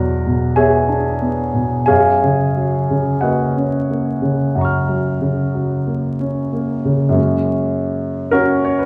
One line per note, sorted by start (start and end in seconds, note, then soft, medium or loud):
0.00 1.86 E2 soft
0.00 0.14 B2 soft
0.00 0.45 F#3 soft
0.00 0.54 A#4 soft
0.00 0.53 D5 soft
0.00 0.54 F#5 soft
0.00 0.57 A#5 medium
0.27 0.77 B2 soft
0.56 1.09 B3 soft
0.56 1.85 G#4 soft
0.56 1.85 C#5 soft
0.56 1.85 E5 soft
0.56 1.84 G#5 medium
0.89 1.42 D4 soft
1.22 1.76 B3 soft
1.55 1.89 B2 soft
1.86 4.52 F#2 soft
1.86 3.19 G#4 soft
1.86 3.20 C#5 soft
1.86 3.20 F5 soft
1.86 3.23 G#5 medium
2.24 2.78 C#3 soft
2.57 3.11 F#3 soft
2.90 3.44 C#3 soft
3.21 3.77 A#3 soft
3.21 6.50 F#4 soft
3.21 6.50 B4 soft
3.21 6.50 D#5 soft
3.21 4.54 F#5 soft
3.57 4.10 C#4 soft
3.91 4.43 A#3 soft
4.22 4.75 C#3 soft
4.55 7.07 F#2 soft
4.55 7.13 F#5 soft
4.55 7.14 A#5 soft
4.61 7.16 C#6 soft
4.61 7.17 F6 soft
4.88 5.42 F#3 soft
5.21 5.75 C#3 soft
5.55 6.08 F#3 soft
5.87 6.41 A#3 soft
6.20 6.73 C#4 soft
6.53 7.04 A#3 soft
6.85 7.16 C#3 soft
7.09 8.85 F#2 soft
7.09 8.85 F#3 soft
7.09 8.85 G#3 soft
7.09 8.85 A#3 soft
7.14 8.31 C#4 soft
8.31 8.65 C#4 medium
8.31 8.65 F#4 medium
8.31 8.67 A#4 medium
8.65 8.81 C#5 medium
8.79 8.85 B4 soft